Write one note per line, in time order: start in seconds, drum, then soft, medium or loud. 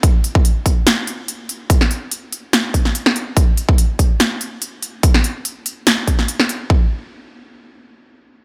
0.03 kick loud
0.03 closed hi-hat medium
0.24 closed hi-hat medium
0.35 kick loud
0.45 closed hi-hat medium
0.66 kick medium
0.66 closed hi-hat medium
0.87 snare loud
0.87 closed hi-hat medium
1.07 closed hi-hat medium
1.28 closed hi-hat medium
1.49 closed hi-hat medium
1.70 kick loud
1.70 closed hi-hat medium
1.81 snare medium
1.91 closed hi-hat medium
2.11 closed hi-hat medium
2.32 closed hi-hat medium
2.53 snare loud
2.53 closed hi-hat medium
2.74 kick medium
2.74 closed hi-hat medium
2.85 snare soft
2.95 closed hi-hat medium
3.06 snare medium
3.16 closed hi-hat medium
3.37 kick loud
3.37 closed hi-hat medium
3.57 closed hi-hat medium
3.69 kick loud
3.78 closed hi-hat medium
3.99 kick medium
3.99 closed hi-hat medium
4.20 snare loud
4.20 closed hi-hat medium
4.41 closed hi-hat medium
4.62 closed hi-hat medium
4.83 closed hi-hat medium
5.03 kick loud
5.03 closed hi-hat medium
5.14 snare medium
5.24 closed hi-hat medium
5.45 closed hi-hat medium
5.66 closed hi-hat medium
5.87 snare loud
5.87 closed hi-hat medium
6.08 kick medium
6.08 closed hi-hat medium
6.19 snare soft
6.28 closed hi-hat medium
6.40 snare medium
6.49 closed hi-hat medium
6.70 kick loud